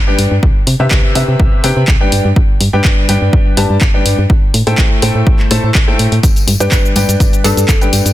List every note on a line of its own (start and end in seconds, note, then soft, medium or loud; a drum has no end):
0.07 0.34 G3 medium
0.07 0.34 D4 medium
0.07 0.34 G4 medium
0.07 0.34 B4 medium
0.07 0.34 G5 medium
0.18 0.27 G2 medium
0.18 open hi-hat loud
0.31 0.39 G2 medium
0.43 0.51 C2 loud
0.43 kick loud
0.67 0.75 C3 medium
0.67 open hi-hat loud
0.80 0.87 C3 medium
0.80 1.13 C3 medium
0.80 1.13 C4 medium
0.80 1.13 G4 medium
0.80 1.13 B4 medium
0.80 1.13 E5 loud
0.91 0.99 C2 loud
0.91 kick loud
0.91 clap loud
1.15 1.61 C3 medium
1.15 1.24 C3 medium
1.15 1.61 C4 medium
1.15 1.61 G4 medium
1.15 1.61 B4 medium
1.15 1.61 E5 medium
1.15 open hi-hat loud
1.28 1.35 C3 medium
1.40 1.48 C2 medium
1.40 kick loud
1.64 1.81 C3 loud
1.64 1.72 C3 medium
1.64 1.81 C4 medium
1.64 1.81 G4 medium
1.64 1.81 B4 medium
1.64 1.81 G5 loud
1.64 open hi-hat loud
1.77 1.84 C3 medium
1.88 1.96 C2 loud
1.88 kick loud
1.88 clap loud
2.01 2.27 G3 medium
2.01 2.27 D4 medium
2.01 2.27 G4 medium
2.01 2.27 B4 medium
2.01 2.27 G5 medium
2.12 2.20 G2 medium
2.12 open hi-hat loud
2.25 2.32 G2 medium
2.36 2.45 G1 loud
2.36 kick loud
2.60 2.69 G2 loud
2.60 open hi-hat loud
2.73 2.81 G2 medium
2.73 3.06 G3 medium
2.73 3.06 D4 medium
2.73 3.06 G4 medium
2.73 3.06 B4 medium
2.73 3.06 G5 loud
2.85 2.93 G1 loud
2.85 kick loud
2.85 clap loud
3.09 3.17 G2 medium
3.09 3.55 G3 medium
3.09 3.55 D4 medium
3.09 3.55 G4 medium
3.09 3.55 B4 medium
3.09 3.55 G5 medium
3.09 open hi-hat loud
3.22 3.29 G2 medium
3.33 3.41 G1 medium
3.33 kick loud
3.57 3.65 G2 medium
3.57 3.74 G3 loud
3.57 3.74 D4 medium
3.57 3.74 G4 medium
3.57 3.74 B4 medium
3.57 3.74 A5 loud
3.57 open hi-hat loud
3.70 3.77 G2 medium
3.81 3.90 G1 loud
3.81 kick loud
3.81 clap loud
3.94 4.21 G3 medium
3.94 4.21 D4 medium
3.94 4.21 G4 medium
3.94 4.21 B4 medium
3.94 4.21 G5 medium
4.06 4.14 G2 medium
4.06 open hi-hat loud
4.18 4.26 G2 medium
4.30 4.38 A1 loud
4.30 kick loud
4.54 4.62 A2 medium
4.54 open hi-hat loud
4.67 4.74 A2 medium
4.67 5.00 A3 medium
4.67 5.00 E4 medium
4.67 5.00 A4 medium
4.67 5.00 C5 medium
4.67 5.00 G5 loud
4.67 open hi-hat medium
4.78 4.86 A1 loud
4.78 kick loud
4.78 clap loud
5.02 5.11 A2 medium
5.02 5.48 A3 medium
5.02 5.48 E4 medium
5.02 5.48 A4 medium
5.02 5.48 C5 medium
5.02 5.48 G5 medium
5.02 open hi-hat loud
5.15 5.22 A2 medium
5.27 5.35 A1 medium
5.27 kick loud
5.39 clap soft
5.51 5.59 A2 medium
5.51 5.68 A3 medium
5.51 5.68 E4 medium
5.51 5.68 A4 medium
5.51 5.68 C5 medium
5.51 5.68 A5 loud
5.51 open hi-hat loud
5.64 5.71 A2 medium
5.75 5.83 A1 loud
5.75 kick loud
5.75 clap loud
5.88 6.14 A3 medium
5.88 6.14 E4 medium
5.88 6.14 A4 medium
5.88 6.14 C5 medium
5.88 6.14 G5 medium
5.99 6.07 A2 medium
5.99 open hi-hat loud
6.12 6.19 A2 medium
6.12 open hi-hat medium
6.23 6.32 G1 loud
6.23 kick loud
6.23 closed hi-hat medium
6.23 tambourine soft
6.23 shaker medium
6.36 closed hi-hat soft
6.36 tambourine soft
6.36 shaker soft
6.47 6.56 G2 loud
6.47 open hi-hat loud
6.47 tambourine medium
6.47 high conga medium
6.60 6.68 G2 medium
6.60 6.93 G3 medium
6.60 6.93 D4 medium
6.60 6.93 G4 medium
6.60 6.93 B4 medium
6.60 6.68 B4 medium
6.60 6.93 G5 loud
6.60 closed hi-hat soft
6.60 tambourine soft
6.60 shaker medium
6.72 6.80 G1 loud
6.72 6.80 B4 medium
6.72 kick loud
6.72 clap loud
6.72 closed hi-hat medium
6.72 tambourine soft
6.72 shaker medium
6.86 shaker soft
6.96 7.04 G2 medium
6.96 7.42 G3 medium
6.96 7.42 D4 medium
6.96 7.42 G4 medium
6.96 7.42 B4 medium
6.96 7.42 G5 medium
6.96 open hi-hat loud
6.96 tambourine loud
6.96 high conga medium
7.09 7.16 G2 medium
7.09 closed hi-hat medium
7.09 tambourine soft
7.09 shaker medium
7.20 7.28 G1 medium
7.20 kick loud
7.20 closed hi-hat medium
7.20 tambourine soft
7.20 shaker medium
7.33 closed hi-hat soft
7.33 shaker soft
7.44 7.53 G2 medium
7.44 7.61 G3 loud
7.44 7.61 D4 medium
7.44 7.62 G4 medium
7.44 7.64 A4 medium
7.44 7.61 B4 medium
7.44 7.61 A5 loud
7.44 open hi-hat loud
7.44 tambourine medium
7.57 7.64 G2 medium
7.57 closed hi-hat soft
7.57 tambourine soft
7.57 shaker medium
7.69 7.77 G1 loud
7.69 kick loud
7.69 clap loud
7.69 closed hi-hat medium
7.69 tambourine soft
7.69 shaker medium
7.81 8.08 G3 medium
7.81 8.08 D4 medium
7.81 8.08 G4 medium
7.81 8.08 B4 medium
7.81 8.08 G5 medium
7.81 closed hi-hat soft
7.81 shaker soft
7.93 8.01 G2 medium
7.93 open hi-hat loud
7.93 tambourine medium
8.06 8.13 G2 medium
8.06 closed hi-hat soft
8.06 tambourine soft
8.06 shaker medium